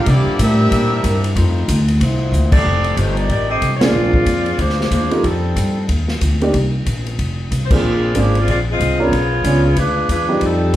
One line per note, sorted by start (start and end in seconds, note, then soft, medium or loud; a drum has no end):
0.00 1.32 D3 medium
0.00 1.32 D4 medium
0.06 0.25 C3 loud
0.06 0.40 A#3 medium
0.06 1.34 C4 medium
0.06 0.40 D4 medium
0.06 1.35 E4 medium
0.06 0.40 E4 medium
0.06 0.39 G4 medium
0.06 0.40 D5 loud
0.06 kick soft
0.06 ride medium
0.10 0.41 G3 medium
0.10 0.41 A#3 medium
0.26 muted upright bass stroke soft
0.39 0.70 A2 loud
0.39 1.34 G3 medium
0.39 1.33 D4 medium
0.39 1.34 E4 medium
0.39 1.33 G4 medium
0.39 1.33 A#4 medium
0.39 1.34 A#4 medium
0.39 1.33 E5 medium
0.39 kick soft
0.39 hi-hat pedal medium
0.39 ride medium
0.71 1.03 A#2 medium
0.71 kick soft
0.71 ride medium
1.04 1.35 G2 loud
1.04 kick soft
1.04 hi-hat pedal medium
1.04 ride medium
1.24 ride medium
1.35 1.67 F2 loud
1.35 1.84 G3 medium
1.35 1.84 A3 medium
1.35 1.84 D#4 medium
1.35 1.84 F4 medium
1.35 kick soft
1.35 ride medium
1.68 2.00 D2 loud
1.68 kick soft
1.68 hi-hat pedal medium
1.68 ride medium
1.88 ride medium
2.00 2.31 C2 medium
2.00 2.65 D3 medium
2.00 2.65 A#3 medium
2.00 2.65 C4 medium
2.00 2.65 E4 medium
2.00 kick soft
2.00 ride medium
2.32 2.64 D2 loud
2.32 hi-hat pedal medium
2.52 2.94 C4 medium
2.52 2.94 G4 medium
2.52 2.94 A4 medium
2.52 2.94 D5 loud
2.52 kick medium
2.52 crash medium
2.65 2.96 F1 medium
2.84 ride soft
2.97 3.28 G1 medium
2.97 3.17 A3 medium
2.97 3.16 D#4 medium
2.97 3.16 G4 medium
2.97 3.17 C5 medium
2.97 kick soft
2.97 hi-hat pedal medium
2.97 ride medium
3.17 3.29 A#3 medium
3.17 3.29 D#4 medium
3.17 3.29 G4 medium
3.17 3.29 D5 medium
3.17 ride soft
3.29 3.61 A1 medium
3.29 3.49 A#3 medium
3.29 3.48 D#4 medium
3.29 3.47 G4 medium
3.29 3.48 D5 loud
3.29 kick soft
3.29 ride medium
3.48 3.71 C4 medium
3.48 3.71 G4 medium
3.48 3.71 A4 medium
3.48 3.71 D#5 loud
3.61 3.92 C2 medium
3.61 kick soft
3.61 hi-hat pedal medium
3.61 ride medium
3.76 3.83 C#5 medium
3.81 4.25 A#3 medium
3.81 4.24 C4 medium
3.81 4.59 C4 medium
3.81 4.25 D4 medium
3.81 4.25 F4 medium
3.81 4.58 F4 medium
3.81 4.60 G#4 medium
3.81 4.25 G#4 medium
3.81 4.60 D5 medium
3.81 snare medium
3.81 ride medium
3.93 4.25 A#1 medium
4.13 kick medium
4.26 4.57 F2 medium
4.26 kick soft
4.26 hi-hat pedal soft
4.26 ride medium
4.46 ride soft
4.58 4.90 D2 medium
4.58 4.78 G#3 medium
4.58 4.78 D4 medium
4.58 4.78 F4 medium
4.58 4.78 C5 medium
4.58 kick soft
4.58 ride medium
4.70 snare soft
4.79 4.90 G#3 medium
4.79 4.90 D4 medium
4.79 4.90 F4 medium
4.79 4.90 C5 medium
4.79 snare soft
4.91 5.23 D#2 medium
4.91 5.10 G#3 medium
4.91 5.10 D4 medium
4.91 5.10 F4 medium
4.91 5.10 C5 medium
4.91 kick soft
4.91 hi-hat pedal medium
4.91 ride medium
5.11 5.25 G#3 medium
5.11 5.23 A3 medium
5.11 5.23 C4 medium
5.11 5.25 D4 medium
5.11 5.22 D#4 soft
5.11 5.23 F4 soft
5.11 5.24 F4 medium
5.11 5.23 G4 medium
5.11 5.25 A#4 medium
5.11 ride soft
5.24 5.55 F2 medium
5.24 5.89 G3 medium
5.24 5.89 C4 medium
5.24 5.90 D#4 medium
5.24 5.89 A4 medium
5.24 kick soft
5.24 ride medium
5.56 5.87 G2 medium
5.56 kick soft
5.56 hi-hat pedal medium
5.56 ride medium
5.89 6.20 D#2 medium
5.89 kick soft
5.89 ride medium
6.08 snare soft
6.21 6.52 D2 medium
6.21 kick soft
6.21 hi-hat pedal medium
6.21 ride medium
6.41 6.53 A#3 medium
6.41 6.52 C4 medium
6.41 6.53 D4 medium
6.41 6.53 D#4 medium
6.41 6.53 G4 medium
6.41 ride soft
6.53 6.85 C2 medium
6.53 kick soft
6.53 ride medium
6.86 7.17 A#1 medium
6.86 kick soft
6.86 hi-hat pedal medium
6.86 ride medium
7.06 ride soft
7.19 7.50 F1 medium
7.19 kick soft
7.19 ride medium
7.51 7.81 C2 medium
7.51 kick soft
7.51 hi-hat pedal medium
7.51 ride medium
7.64 7.71 C5 medium
7.71 8.13 A#3 medium
7.71 8.13 C4 medium
7.71 8.13 D4 medium
7.71 8.13 F4 medium
7.71 8.17 F4 medium
7.71 8.14 G#4 medium
7.71 8.17 G#4 medium
7.71 kick medium
7.71 crash medium
7.75 8.17 C4 medium
7.75 8.18 D5 medium
7.82 8.13 A#1 medium
8.15 8.46 G#1 medium
8.15 8.36 G#3 medium
8.15 8.33 A#3 medium
8.15 8.33 C4 soft
8.15 8.33 D4 soft
8.15 8.36 D4 medium
8.15 8.33 F4 medium
8.15 8.36 F4 medium
8.15 8.33 G#4 medium
8.15 8.36 C5 medium
8.15 kick soft
8.15 hi-hat pedal medium
8.15 ride medium
8.35 8.48 G#4 medium
8.35 8.48 D5 medium
8.35 ride soft
8.39 8.48 C4 medium
8.39 8.49 F4 medium
8.47 8.79 A#1 medium
8.47 8.58 C4 medium
8.47 8.58 F4 medium
8.47 8.58 G#4 medium
8.47 8.58 D5 loud
8.47 kick soft
8.47 ride medium
8.70 8.99 C4 medium
8.70 8.99 F4 medium
8.70 8.99 G#4 medium
8.70 8.99 D#5 medium
8.80 9.11 C2 medium
8.80 kick soft
8.80 hi-hat pedal medium
8.80 ride medium
8.99 9.10 B3 medium
8.99 9.78 B3 medium
8.99 9.10 C#4 medium
8.99 9.11 D4 medium
8.99 9.11 F4 medium
8.99 9.77 F4 medium
8.99 9.11 A#4 medium
8.99 9.78 C#5 medium
9.03 9.78 G#4 medium
9.12 9.43 B1 medium
9.12 kick soft
9.12 ride medium
9.44 9.75 C#2 medium
9.44 9.62 B3 medium
9.44 9.62 C#4 soft
9.44 9.62 D4 soft
9.44 9.62 F4 soft
9.44 9.63 G#4 medium
9.44 kick soft
9.44 hi-hat pedal medium
9.44 ride medium
9.76 10.08 D2 medium
9.76 10.10 G#3 medium
9.76 10.09 D4 medium
9.76 10.09 F4 medium
9.76 10.10 B4 medium
9.76 kick soft
9.76 ride medium
10.09 10.40 E2 medium
10.09 10.40 G#3 medium
10.09 10.40 D4 medium
10.09 10.40 F4 medium
10.09 10.40 B4 medium
10.09 kick soft
10.09 hi-hat pedal medium
10.09 ride medium
10.28 10.71 G3 medium
10.28 10.71 C4 medium
10.28 10.71 D#4 medium
10.28 10.71 F4 medium
10.28 10.71 G4 medium
10.41 10.72 F2 medium
10.41 10.76 G3 medium
10.41 10.76 C4 medium
10.41 10.76 D#4 medium
10.41 10.76 A4 medium
10.41 kick soft
10.41 ride medium